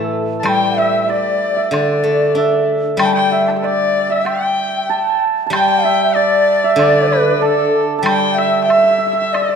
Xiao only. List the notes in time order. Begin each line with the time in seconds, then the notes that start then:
Already playing: A4
0.47 G5
0.77 E5
1.09 D5
1.72 D5
2.99 G5
3.06 A5
3.13 G5
3.32 E5
3.56 E5
3.65 D5
4.28 G5
5.54 G5
5.84 E5
6.15 D5
6.76 D5
7.07 B4
7.38 A4
8.02 G5
8.30 G5
8.34 E5
8.63 E5 G5
9.33 D5